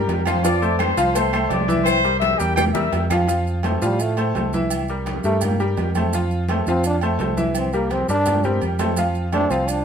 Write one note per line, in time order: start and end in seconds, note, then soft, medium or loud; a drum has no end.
0.00 0.20 G3 medium
0.00 0.20 G4 medium
0.00 0.20 A#4 medium
0.00 0.24 A#4 medium
0.00 0.25 A#5 medium
0.08 0.91 F2 loud
0.08 cowbell medium
0.08 high conga soft
0.08 low timbale medium
0.08 low agogo medium
0.08 maracas soft
0.26 0.41 F3 medium
0.26 0.41 F4 medium
0.26 0.43 C5 medium
0.26 0.41 F5 loud
0.26 0.44 C6 medium
0.26 cowbell medium
0.26 high conga medium
0.26 low agogo loud
0.26 claves medium
0.26 maracas medium
0.44 0.59 F3 medium
0.44 0.59 F4 medium
0.44 0.79 D5 loud
0.44 0.59 F5 medium
0.44 0.80 D6 medium
0.44 cowbell loud
0.44 high conga soft
0.44 low agogo medium
0.44 maracas loud
0.62 0.91 A3 medium
0.62 0.91 A4 medium
0.62 0.91 C5 medium
0.62 maracas soft
0.79 1.12 C5 loud
0.79 1.14 C6 medium
0.79 cowbell medium
0.79 high conga loud
0.79 low timbale medium
0.79 low agogo loud
0.79 claves medium
0.79 maracas soft
0.97 1.47 C2 loud
0.97 1.12 F3 loud
0.97 1.12 F4 loud
0.97 1.12 F5 loud
0.97 cowbell medium
0.97 maracas medium
1.14 1.30 A3 medium
1.14 1.30 A4 medium
1.14 1.47 C5 loud
1.14 1.30 C5 medium
1.14 1.49 C6 medium
1.14 cowbell loud
1.14 high conga soft
1.14 low agogo medium
1.14 maracas loud
1.33 1.62 A3 medium
1.33 1.62 A4 medium
1.33 1.63 C5 medium
1.33 high conga soft
1.33 low agogo loud
1.33 claves medium
1.33 maracas soft
1.48 2.33 C2 loud
1.48 1.82 D5 medium
1.48 1.84 D6 medium
1.48 cowbell medium
1.48 high conga medium
1.48 low timbale medium
1.48 low agogo medium
1.48 maracas soft
1.68 1.97 E3 loud
1.68 1.98 E4 medium
1.68 1.98 E5 medium
1.68 high conga medium
1.68 maracas medium
1.84 2.18 C5 loud
1.84 2.19 C6 medium
1.84 cowbell loud
1.84 high conga soft
1.84 low agogo loud
1.84 claves medium
1.84 maracas medium
2.04 2.33 G3 medium
2.04 2.33 G4 medium
2.04 2.34 A#4 medium
2.04 high conga soft
2.04 maracas soft
2.20 2.37 E5 loud
2.20 2.39 E6 medium
2.20 cowbell medium
2.20 high conga loud
2.20 low timbale medium
2.20 low agogo medium
2.20 maracas soft
2.39 2.73 E2 loud
2.39 2.69 G3 medium
2.39 2.69 G4 medium
2.39 2.57 G4 medium
2.39 2.69 A#4 medium
2.39 2.55 G5 loud
2.39 high conga soft
2.39 maracas medium
2.56 2.66 G4 medium
2.56 2.64 G5 loud
2.56 cowbell loud
2.56 high bongo loud
2.56 high conga soft
2.56 low conga medium
2.56 low agogo loud
2.56 claves medium
2.56 maracas medium
2.74 2.91 E2 medium
2.74 3.04 G3 medium
2.74 3.04 G4 medium
2.74 3.04 A#4 medium
2.74 3.07 E5 medium
2.74 3.08 E6 medium
2.74 high bongo medium
2.74 high conga soft
2.74 maracas soft
2.92 3.76 F2 medium
2.92 cowbell medium
2.92 high conga soft
2.92 low timbale loud
2.92 low agogo medium
2.92 maracas soft
3.10 3.26 F3 medium
3.10 3.26 F4 medium
3.10 3.26 F5 medium
3.10 cowbell medium
3.10 low bongo medium
3.10 high conga loud
3.10 low agogo loud
3.10 claves medium
3.10 maracas medium
3.28 3.57 F3 medium
3.28 3.57 F4 medium
3.28 3.58 F5 medium
3.28 high conga soft
3.28 low agogo medium
3.28 maracas medium
3.46 high conga soft
3.46 maracas soft
3.63 3.78 A3 medium
3.63 3.79 A4 medium
3.63 3.79 C5 medium
3.63 high conga loud
3.63 low timbale medium
3.63 low agogo loud
3.63 maracas soft
3.82 4.31 A2 loud
3.82 4.11 F3 medium
3.82 4.03 G3 medium
3.82 4.11 F4 medium
3.82 4.11 F5 medium
3.82 maracas medium
3.99 4.18 A3 medium
3.99 low agogo medium
3.99 maracas medium
4.17 4.32 A3 medium
4.17 4.32 A4 medium
4.17 4.32 C5 medium
4.17 high conga soft
4.17 low agogo loud
4.17 maracas soft
4.35 5.18 C2 medium
4.35 4.50 A3 medium
4.35 4.50 A4 medium
4.35 4.51 C5 medium
4.35 high conga medium
4.35 low timbale medium
4.35 low agogo medium
4.35 maracas soft
4.53 4.82 E3 medium
4.53 4.83 E4 medium
4.53 4.83 E5 medium
4.53 high conga medium
4.53 maracas medium
4.70 high conga soft
4.70 low agogo loud
4.70 maracas loud
4.88 5.18 G3 medium
4.88 5.18 G4 medium
4.88 5.19 A#4 medium
4.88 high conga soft
4.88 maracas soft
5.06 high conga loud
5.06 low timbale medium
5.06 low agogo medium
5.06 maracas soft
5.24 5.74 G2 loud
5.24 5.54 G3 medium
5.24 5.45 A3 medium
5.24 5.54 G4 medium
5.24 5.54 A#4 medium
5.24 maracas medium
5.41 5.60 A#3 medium
5.41 high conga soft
5.41 low conga medium
5.41 low agogo loud
5.41 maracas medium
5.60 5.89 G3 medium
5.60 5.89 G4 medium
5.60 5.89 A#4 medium
5.60 high conga soft
5.60 maracas soft
5.77 6.60 F2 loud
5.77 high conga soft
5.77 low timbale medium
5.77 low agogo medium
5.77 maracas soft
5.95 6.10 A3 medium
5.95 6.10 A4 medium
5.95 6.11 C5 medium
5.95 high conga medium
5.95 low agogo loud
5.95 maracas medium
6.13 6.42 F3 medium
6.13 6.43 F4 medium
6.13 6.43 F5 medium
6.13 high conga soft
6.13 low agogo medium
6.13 maracas medium
6.31 high conga soft
6.31 maracas soft
6.48 6.64 A3 medium
6.48 6.64 A4 medium
6.48 6.64 C5 medium
6.48 high conga loud
6.48 low timbale medium
6.48 low agogo loud
6.48 maracas soft
6.67 7.16 F2 loud
6.67 6.96 F3 medium
6.67 6.84 C4 medium
6.67 6.96 F4 medium
6.67 6.97 F5 medium
6.67 maracas medium
6.84 6.97 D4 medium
6.84 high conga soft
6.84 low agogo medium
6.84 maracas medium
7.01 7.17 A3 medium
7.01 7.17 A4 medium
7.01 7.17 C5 medium
7.01 high conga soft
7.01 low agogo loud
7.01 maracas soft
7.19 8.03 C2 loud
7.19 7.34 A3 medium
7.19 7.35 A4 medium
7.19 7.35 C5 medium
7.19 high conga medium
7.19 low timbale medium
7.19 low agogo medium
7.19 maracas soft
7.37 7.66 E3 medium
7.37 7.66 E4 medium
7.37 7.67 E5 medium
7.37 high conga medium
7.37 maracas medium
7.55 7.75 C4 medium
7.55 high conga soft
7.55 low agogo loud
7.55 maracas loud
7.73 8.02 G3 medium
7.73 7.93 A#3 medium
7.73 8.03 G4 medium
7.73 8.03 A#4 medium
7.73 maracas soft
7.90 8.09 C4 medium
7.90 high conga medium
7.90 low timbale medium
7.90 low agogo medium
7.90 maracas soft
8.08 8.58 G2 loud
8.08 8.38 G3 medium
8.08 8.46 D4 loud
8.08 8.38 G4 medium
8.08 8.38 A#4 medium
8.08 high conga soft
8.08 maracas medium
8.26 high conga soft
8.26 low conga medium
8.26 high timbale medium
8.26 low agogo loud
8.26 maracas medium
8.44 8.73 G3 medium
8.44 8.62 C4 medium
8.44 8.74 G4 medium
8.44 8.74 A#4 medium
8.44 high conga soft
8.44 low conga medium
8.44 maracas soft
8.61 9.45 F2 medium
8.61 high conga soft
8.61 low agogo medium
8.61 maracas soft
8.79 8.94 A3 medium
8.79 8.94 A4 medium
8.79 8.94 C5 medium
8.79 high conga medium
8.79 low timbale medium
8.79 low agogo loud
8.79 maracas medium
8.97 9.27 F3 medium
8.97 9.27 F4 medium
8.97 9.27 F5 medium
8.97 high conga soft
8.97 low agogo medium
8.97 maracas loud
9.15 maracas soft
9.32 9.48 A3 medium
9.32 9.52 D4 loud
9.32 9.48 A4 medium
9.32 9.48 C5 medium
9.32 high conga medium
9.32 low timbale medium
9.32 low agogo loud
9.32 maracas soft
9.50 9.85 C2 medium
9.50 9.80 F3 medium
9.50 9.70 C4 medium
9.50 9.80 F4 medium
9.50 9.80 F5 medium
9.50 maracas medium
9.68 9.85 D4 medium
9.68 high conga soft
9.68 low agogo medium
9.68 maracas loud